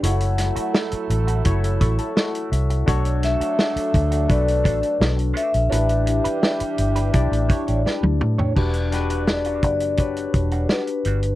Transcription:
<<
  \new Staff \with { instrumentName = "Vibraphone" } { \time 4/4 \key e \dorian \tempo 4 = 84 fis''4 r2. | r8 e''4. d''4 r8 e''8~ | e''2. r4 | r4 d''8 d''8 r4 b'4 | }
  \new Staff \with { instrumentName = "Tine electric piano" } { \time 4/4 \key e \dorian << { r2 r8 cis'''16 a''16 fis''8 e''8 | r1 | r1 | r1 | } \\ { <e' fis' a' cis''>4. r8 <e' fis' a' cis''>4. r8 | <d' fis' a' cis''>4. r8 <d' fis' a' b'>4. r8 | <d' e' g' b'>4. r8 <d' e' g' d''>4. r8 | <d' fis' g' b'>8 <d' fis' g' b'>4 r8 <d' fis' g' b'>4. r8 | } >> }
  \new Staff \with { instrumentName = "Clean electric guitar" } { \time 4/4 \key e \dorian <a e' fis'>16 r8 <a e' fis'>16 <a e' fis'>16 r8 <a e' fis'>16 r8 <a e' a'>16 <a e' a'>16 <a e' fis'>8 r8 | <a d' fis'>16 r8 <a d' fis'>16 <a d' fis'>16 r8 <a d' fis'>16 r8 <a d' a'>16 <a d' a'>16 r8 <a d' fis'>16 r16 | <d' g' b'>16 r8 <d' g' b'>16 <d' g' b'>16 r8 <d' g' b'>16 r8 <d' g' cis''>16 <d' g' cis''>16 <d' g' b'>16 r8 <d' g' cis''>16 | <g d' fis'>16 r8 <g d' fis'>16 r16 <g d' fis'>16 r4 r16 <g d' fis'>16 <g d' fis'>16 r16 <g d' fis'>16 r16 | }
  \new Staff \with { instrumentName = "Horn section" } { \time 4/4 \key e \dorian <fis a e' a'>2.~ <fis a e' a'>8 r8 | <fis a d' a'>2.~ <fis a d' a'>8 r8 | <e g d' g'>2.~ <e g d' g'>8 r8 | r1 | }
  \new Staff \with { instrumentName = "Fingered electric bass" } { \clef bass \time 4/4 \key e \dorian fis,,8. r8. a,,8 fis,,8 a,,16 r8. c,8 | b,,8. r8. d,8 b,,8 a,,16 r16 b,,8 r16 ais,,16 | a,,8. r8. g,,8 b,,16 a,,16 r16 a,,16 r16 d,16 a,8 | e,,4. fis,,4 e,,8 r8 g,,8 | }
  \new DrumStaff \with { instrumentName = "Drums" } \drummode { \time 4/4 hh16 hh16 <hh sn>16 hh16 sn16 hh16 hh16 hh16 <hh bd>16 hh16 <hh bd>16 hh16 sn16 hh16 hh16 hh16 | <hh bd>16 hh16 <hh sn>16 hh16 sn16 hh16 <hh bd>16 hh16 <hh bd>16 hh16 <hh bd>16 hh16 sn16 hh16 hh16 hh16 | hh16 hh16 hh16 hh16 sn16 hh16 hh16 hh16 <hh bd>16 hh16 <hh bd>16 hh16 sn16 tommh16 toml16 tomfh16 | <cymc bd>16 hh16 <hh sn>16 hh16 sn16 hh16 <hh bd>16 hh16 <hh bd>16 hh16 <hh bd>16 hh16 sn16 hh16 hh16 hh16 | }
>>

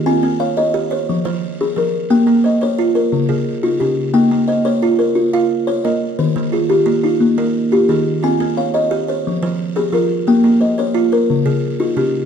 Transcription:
<<
  \new Staff \with { instrumentName = "Kalimba" } { \time 12/8 \key bes \dorian \tempo 4. = 117 << { <aes' aes''>4 f''4. c''4 r4. bes'4 | g''4 ees''4. bes'4 r4. g'4 | g''4 ees''4. bes'4. r4 ees''4 | c''4 aes'4. ees'4. r4 aes'4 |
aes''4 f''4. c''4 r4. bes'4 | g''4 ees''4. bes'4 r4. g'4 | } \\ { c'4 r8 ees''4 r8 f4 r8 aes'4 r8 | bes4 r8 des''4 r8 des4 r8 f'4 r8 | bes4 r8 des''4 r8 f'4 r8 des''4 r8 | ees4 r8 g'4 r8 bes4 r8 g'4 r8 |
c'4 r8 ees''4 r8 f4 r8 aes'4 r8 | bes4 r8 des''4 r8 des4 r8 f'4 r8 | } >> }
  \new Staff \with { instrumentName = "Kalimba" } { \time 12/8 \key bes \dorian <ees' f'>4 des''8 des''4 des''4 c''4. r4 | g'4 c''8 c''4 c''4 aes'4 ees'8 des'4 | ees'4 c''8 c''4 c''4 f''4 c''8 bes'4~ | bes'8 r8 f'8 f'4 f'4 bes'4 f'8 ees'4 |
f'4 des''8 des''4 des''4 c''4 g'8 f'4 | g'4 c''8 c''4 c''4 aes'4 ees'8 des'4 | }
  \new Staff \with { instrumentName = "Kalimba" } { \time 12/8 \key bes \dorian r8 c'4 r8 g'4 r8 f4 r8 f4 | r8 bes4 r8 f'4 r8 des4 r8 des4 | r8 bes4 r8 f'4 r8 f'4 r8 bes4 | r8 ees4 r8 bes4 r8 bes4 r8 ees4 |
r8 c'4 r8 g'4 r8 f4 r8 f4 | r8 bes4 r8 f'4 r8 des4 r8 des4 | }
>>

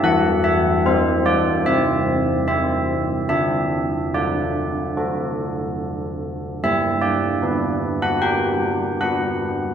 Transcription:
\new Staff \with { instrumentName = "Church bells" } { \time 4/4 \key g \major \tempo 4 = 74 << { fis''8 e''8 c''8 d''8 e''4 e''4 | e''4 d''2 r4 | e''8 d''4~ d''16 fis''16 g''4 fis''4 | } \\ { e4 g'4 c'4 <g' c''>4 | d'4 fis'4 <fis' a'>2 | g4 <d' b'>4 g'4 <d' b'>4 | } >> }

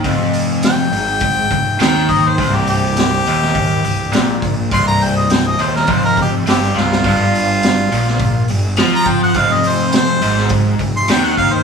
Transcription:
<<
  \new Staff \with { instrumentName = "Harmonica" } { \time 4/4 \key f \major \tempo 4 = 103 r4 g''2 g''8 ees''16 c''16~ | c''16 g'16 g'2. r8 | c'''16 bes''16 g''16 ees''16 g''16 ees''16 c''16 bes'16 c''16 bes'16 g'16 r16 g'8 f'8~ | f'2~ f'8 r8. bes''16 g''16 fis''16 |
f''16 ees''16 c''8 c''4 r8. c'''16 g''16 fis''16 f''16 c''16 | }
  \new Staff \with { instrumentName = "Overdriven electric guitar" } { \clef bass \time 4/4 \key f \major f,4. aes,4 f,8 ees4 | c,4. ees,4 c,8 bes,4 | c,4. ees,8 f,4 g,8 c,8 | g,4. bes,4 g,8 f4 |
f,4. aes,4 f,8 ees4 | }
  \new Staff \with { instrumentName = "Fingered electric bass" } { \clef bass \time 4/4 \key f \major f,,4. aes,,4 f,,8 ees,4 | c,,4. ees,,4 c,,8 bes,,4 | c,,4. ees,,8 f,,4 g,,8 c,,8 | g,,4. bes,,4 g,,8 f,4 |
f,,4. aes,,4 f,,8 ees,4 | }
  \new DrumStaff \with { instrumentName = "Drums" } \drummode { \time 4/4 <hho bd>8 hho8 <hho sn>8 hho8 <hho bd>8 <hho bd>8 <hho sn>16 sn16 <hho bd>8 | <hho bd>8 hho8 <hho sn>8 hho16 sn16 <hho bd>8 hho8 <hho sn>8 <hho bd>8 | <hho bd>8 hho8 <hho sn>8 hho16 sn16 <hho bd>8 <hho bd>8 <hho sn>16 sn16 sn16 sn16 | <hho bd>8 hho8 <hho sn>8 hho16 sn16 <hho bd>8 hho8 <hho sn>8 <hho bd>8 |
<hho bd>8 hho8 <hho sn>8 hho16 sn16 <hho bd>8 <hho bd>8 <hho sn>16 sn16 <hho bd>8 | }
>>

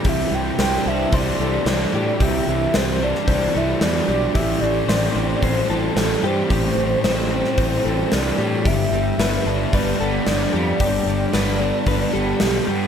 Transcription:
<<
  \new Staff \with { instrumentName = "Soft synth lead" } { \time 4/4 \key c \major \tempo 4 = 112 e''8 g''8 g''8 e''8 d''4 d''4 | e''8 e''8 c''8 d''4 e''8 d''8 d''8 | e''8 d''4. c''4 a'8 c''8~ | c''2. d''4 |
e''2 d''2~ | d''2~ d''8 g'4 r8 | }
  \new Staff \with { instrumentName = "Clean electric guitar" } { \time 4/4 \key c \major g'4 c''4 c''8 a'4 g'8 | g'4 c''4 c''8 a'4 g'8 | g'4 c''4 c''8 a'4 g'8 | g'4 c''4 c''8 a'4 g'8 |
g'4 b'4 b'8 a'4 g'8 | g'4 b'4 b'8 a'4 g'8 | }
  \new Staff \with { instrumentName = "Distorted electric guitar" } { \clef bass \time 4/4 \key c \major c8 e8 d'8 g8 d'8 e8 g8 e8 | c8 e8 d'8 g8 d'8 e8 g8 e8 | a,8 e8 c'8 g8 c'8 e8 g8 e8 | a,8 e8 c'8 g8 c'8 e8 g8 e8 |
g,8 g8 d'8 b8 d'8 g8 b8 g8 | g,8 g8 d'8 b8 d'8 g8 b8 g8 | }
  \new Staff \with { instrumentName = "Overdriven electric guitar" } { \clef bass \time 4/4 \key c \major c8 e8 g8 d'8 e8 g8 e8 g8 | c8 e8 g8 d'8 e8 g8 e8 g8 | a,8 e8 g8 c'8 e8 g8 e8 g8 | a,8 e8 g8 c'8 e8 g8 e8 g8 |
g,8 g8 b8 d'8 g8 b8 g8 b8 | g,8 g8 b8 d'8 g8 b8 g8 b8 | }
  \new Staff \with { instrumentName = "Fingered electric bass" } { \clef bass \time 4/4 \key c \major c,8 c,8 c,8 c,8 c,8 c,8 c,8 a,8 | c,8 c,8 c,4 c,8 c,8 e,8 b,,8 | a,,8 a,,8 a,,8 a,,8 a,,8 a,,8 a,,8 g,8 | a,,8 a,,8 a,,4 a,,8 a,,8 c,8 a,8 |
g,,8 g,,8 g,,8 g,,8 g,,8 g,,8 g,,8 f,8 | g,,8 g,,8 g,,4 g,,8 g,,8 b,,8 g,8 | }
  \new DrumStaff \with { instrumentName = "Drums" } \drummode { \time 4/4 <hho bd>4 <hho sn>4 <hho bd>4 <hho sn>4 | <hho bd>4 <hho sn>8. sn16 <hho bd>4 <hho sn>4 | <hho bd>4 <hho sn>4 <hho bd>4 <hho sn>4 | <hho bd>4 <hho sn>8. sn16 <hho bd>4 <hho sn>4 |
<hho bd>4 <hho sn>4 <hho bd>4 <hho sn>4 | <hho bd>4 <hho sn>4 <hho bd>4 <hho sn>4 | }
>>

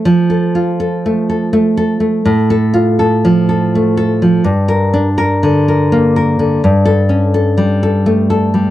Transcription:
\new Staff \with { instrumentName = "Nylon-string guitar" } { \time 3/4 \key f \major \tempo 4 = 83 << { \tuplet 3/2 { r8 a'4 } r2 | \tuplet 3/2 { r8 a'4 } r2 | \tuplet 3/2 { r8 bes'4 } r2 | \tuplet 3/2 { r8 a'4 } r2 | } \\ { \tuplet 3/2 { f4 f'8 a'8 a8 a'8 a8 a'8 a8 } | \tuplet 3/2 { a,4 f'8 a'8 f8 a'8 a8 a'8 f8 } | \tuplet 3/2 { g,4 d'8 bes'8 d8 bes'8 bes8 bes'8 d8 } | \tuplet 3/2 { g,4 cis'8 a'8 g8 a'8 a8 a'8 g8 } | } >> }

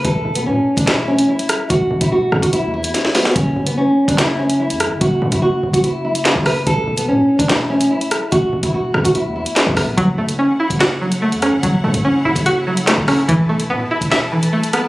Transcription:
<<
  \new Staff \with { instrumentName = "String section" } { \time 4/4 \key e \mixolydian \tempo 4 = 145 << { r1 | r1 | r1 | r1 |
r1 | r1 | <cis'' fis''>1~ | <cis'' fis''>1 |
<b' a''>1 | } \\ { r1 | r1 | r1 | r1 |
r1 | r1 | <e' a'>1~ | <e' a'>1~ |
<e' a'>1 | } >> }
  \new Staff \with { instrumentName = "Nylon-string guitar" } { \time 4/4 \key e \mixolydian a'8. b16 cis'8. d'16 e'8 cis'8 e'4 | fis'8. e'16 fis'8. fis'16 e'8 e'4 b8 | cis'8. b16 cis'8. d'16 e'8 cis'8 e'4 | fis'8. e'16 fis'8. fis'16 e'8 e'4 b'8 |
a'8. b16 cis'8. d'16 e'8 cis'8 e'4 | fis'8. e'16 fis'8. fis'16 e'8 e'4 b8 | r1 | r1 |
r1 | }
  \new Staff \with { instrumentName = "Synth pluck" } { \time 4/4 \key e \mixolydian r1 | r1 | r1 | r1 |
r1 | r1 | fis8 a8 cis'8 e'8 fis'8 fis8 a8 cis'8 | fis8 a8 cis'8 e'8 fis'8 fis8 a8 cis'8 |
e8 a8 b8 e'8 e''8 e8 a8 b8 | }
  \new Staff \with { instrumentName = "808-style bass" } { \clef bass \time 4/4 \key e \mixolydian e,,8 e,,8 b,16 r8 e,,4~ e,,16 r4 | e,,8 gis,,16 e,,8. e,16 e,,8 e,8. r4 | fis,,8 fis,,8. r8 fis,,4. fis,16. fis,,16. | fis,,8 fis,16 fis,,8. fis,,16 fis,,4. fis,,8. |
e,,8 e,,8 b,16 r8 e,,4~ e,,16 r4 | e,,8 gis,,16 e,,8. e,16 e,,8 e,8 r8 e,16 d,,8 | fis,,8 fis,,8. r8 fis,,4. fis,16. fis,,16. | fis,,8 fis,16 fis,,8. fis,,16 fis,,4. fis,,8. |
e,,8 e,,8 b,16 r8 e,,4~ e,,16 r4 | }
  \new DrumStaff \with { instrumentName = "Drums" } \drummode { \time 4/4 <hh bd>8. hh16 r8. <hh bd>16 <hc hh sn>8. hh16 r16 hh16 <hh ss>8 | <hh bd>8. <hh bd>16 r8 ss16 <hh bd>16 hh8. hh16 <hh sn>16 sn16 <hho sn>16 sn16 | <hh bd>8. hh16 r8. <hh bd>16 <hc hh sn>8. hh16 r16 hh16 <hh ss>8 | <hh bd>8. <hh bd>16 r8. <hh bd>16 hh8. hh16 <hc hh sn>16 bd16 <hho ss>8 |
<hh bd>8. hh16 r8. <hh bd>16 <hc hh sn>8. hh16 r16 hh16 <hh ss>8 | <hh bd>8. <hh bd>16 r8 ss16 <hh bd>16 hh8. hh16 <hc hh sn>16 bd16 <hho bd ss>8 | <hh bd>8. hh16 r8. <hh bd>16 <hc hh sn>8. hh16 r16 hh16 <hh ss>8 | <hh bd>8. <hh bd>16 r8. <hh bd>16 hh8. hh16 <hc hh sn>16 bd16 <hho ss>8 |
<hh bd>8. hh16 r8. <hh bd>16 <hc hh sn>8. hh16 r16 hh16 <hh ss>8 | }
>>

